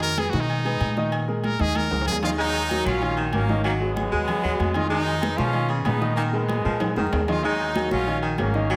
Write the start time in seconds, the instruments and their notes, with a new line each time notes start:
Already playing: upright bass F2, grand piano D#3 D#4 D#5
0.02 trumpet A#4, high conga, low agogo
0.18 grand piano G#3 G#4 B4, trumpet G#4, high conga, low agogo
0.30 upright bass B2, grand piano D#3 D#4, trumpet F#4, high conga
0.34 grand piano D#5
0.41 trumpet D#4
0.49 high conga, low agogo
0.65 grand piano G#3 G#4 B4, high conga, low agogo
0.80 upright bass A#2, high conga, low agogo
0.97 grand piano D#3 D#4 D#5, high conga
1.12 high conga, low agogo
1.28 grand piano G#3 G#4 A#4, high conga
1.44 trumpet A#4, high conga, low agogo
1.59 upright bass D#2, grand piano D#3 D#4 D#5, trumpet G#4, high conga
1.75 trumpet A#4, high conga, low agogo
1.91 upright bass C#2, grand piano G#3 G#4 A#4, low conga, high timbale
2.01 high timbale
2.06 upright bass D#2, trumpet G#4, low conga, low agogo
2.11 low timbale
2.23 grand piano D#3 D#4 D#5, trumpet section G#3 F4, low conga, low timbale, low agogo
2.38 grand piano D#3 D#4 D#5, trumpet section F#3 D#4, baritone saxophone G#3, high conga, low agogo
2.54 high conga, low agogo
2.69 grand piano F#3 F#4 A#4, high conga, low agogo
2.85 upright bass A#1, baritone saxophone F#3, trumpet section C#4 F4, high conga
3.02 grand piano D#3 D#4 D#5, high conga, low agogo
3.17 baritone saxophone D#3, high conga, low agogo
3.33 upright bass G#1, grand piano F#3 F#4 A#4, trumpet section A#3 C#4, high conga, low agogo
3.49 grand piano D#3 D#4 D#5, high conga
3.64 baritone saxophone F#3, trumpet section A#3 D#4, high conga, low agogo
3.81 grand piano F#3 F#4 G#4, trumpet section G#3 B3, high conga
3.96 high conga, low agogo
4.11 upright bass D#2, grand piano F#3 F#4 G#4, baritone saxophone G#3, high conga
4.28 high conga, low conga, low agogo
4.43 upright bass D#2, baritone saxophone F#3, grand piano F#3 F#4 G#4, high conga
4.59 upright bass F2, high conga, low agogo
4.74 grand piano D#3 D#4 D#5, trumpet section G#3 F4, high conga, low agogo
4.90 grand piano D#3 D#4 D#5, baritone saxophone G#3, trumpet section G#3 D#4, high conga, low agogo
5.06 low agogo
5.22 grand piano G#3 G#4 B4, high conga, low agogo
5.38 upright bass B2, baritone saxophone F3, trumpet section C#4 F4, high conga
5.53 grand piano D#3 D#4 D#5, high conga, low agogo
5.69 baritone saxophone C#3, high conga, low agogo
5.85 upright bass A#2, grand piano G#3 G#4 B4, trumpet section B3 D#4, high conga, low timbale, low agogo
6.01 grand piano D#3 D#4 D#5, high conga
6.16 baritone saxophone D#3, trumpet section A#3 D#4, high conga, low agogo
6.33 grand piano G#3 G#4 A#4, trumpet section G#3 B3, high conga
6.48 high conga, low agogo
6.65 upright bass A#2, baritone saxophone F3, grand piano G#3 G#4 A#4, high conga
6.80 high conga, low conga, high timbale, low agogo
6.96 upright bass F2, baritone saxophone D#3, grand piano G#3 G#4 A#4, high conga, high timbale
7.07 high conga
7.12 upright bass D#2, low timbale, low agogo
7.28 grand piano D#3 D#4 D#5, trumpet section G#3 F4, low conga, low timbale, low agogo
7.44 grand piano D#3 D#4 D#5, trumpet section F#3 D#4, baritone saxophone G#3, high conga, low agogo
7.60 high conga, low agogo
7.75 grand piano F#3 F#4 A#4, high conga, low agogo
7.91 upright bass A#1, baritone saxophone F#3, trumpet section C#4 F4, high conga
8.07 grand piano D#3 D#4 D#5, high conga, low agogo
8.22 baritone saxophone D#3, high conga, low agogo
8.38 upright bass G#1, grand piano F#3 F#4 A#4, trumpet section A#3 C#4, high conga, low timbale, low agogo
8.54 grand piano D#3 D#4 D#5, high conga
8.69 baritone saxophone F#3, trumpet section A#3 D#4, high conga, low agogo